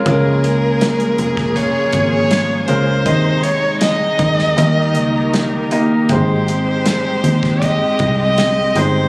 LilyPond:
<<
  \new Staff \with { instrumentName = "Violin" } { \time 4/4 \key aes \major \tempo 4 = 79 bes'2 des''8. des''8. c''8~ | c''8 des''8 ees''2~ ees''8 r8 | c''2 ees''8. ees''8. c''8 | }
  \new Staff \with { instrumentName = "Grand piano" } { \time 4/4 \key aes \major <aes des' f' bes'>2 r4. <aes des' f' bes'>8 | <c ees' aes' ees''>2 <bes ees' g' ees''>4. <bes ees' g' ees''>8 | <aes ees' g' c''>2 r4. <aes ees' g' c''>8 | }
  \new Staff \with { instrumentName = "Grand piano" } { \clef bass \time 4/4 \key aes \major des4. r2 r8 | ees4. r8 ees4. r8 | aes,4. r2 r8 | }
  \new Staff \with { instrumentName = "String section" } { \time 4/4 \key aes \major <des bes aes'>1 | <aes ees'>2 <ees ees' g' bes'>2 | <aes c' g'>1 | }
  \new Staff \with { instrumentName = "Steel-string acoustic guitar" } { \time 4/4 \key aes \major <des f aes f' bes'>8 <aes f' bes'>8 <f aes f' bes'>8 <aes f' bes'>8 <des f aes f' bes'>4 <f aes f' bes'>8 <aes f'>8 | <ees aes c' aes'>8 <aes aes'>8 <ees aes c' aes'>4 <ees g bes ees' g'>4 <g bes ees' g'>8 <bes ees' g'>8 | <aes c' ees' g'>8 <c' ees' g'>8 <aes c' ees' g'>8 <c' ees' g'>8 <aes c' ees' g'>4 <aes c' ees' g'>8 <c' ees' g'>8 | }
  \new Staff \with { instrumentName = "Fingered electric bass" } { \clef bass \time 4/4 \key aes \major des,4. f,,8. r16 aes,,4 des,8 | ees,4. ees,8 ees,8 des,4. | aes,,4. ees,8. r16 c,4 g,,8 | }
  \new DrumStaff \with { instrumentName = "Drums" } \drummode { \time 4/4 <hh bd>8 hh8 <hh sn>16 hh16 hh16 <bd sn>16 <hh bd>8 <hh bd>8 <hh sn>8 hh8 | <hh bd>8 hh8 <hh sn>8 <hh bd>16 sn16 hh8 hh8 <hh sn>8 hh8 | <hh bd>8 hh8 <hh sn>8 hh16 <bd sn>16 <hh bd>8 <hh bd>8 <hh sn>8 hh8 | }
>>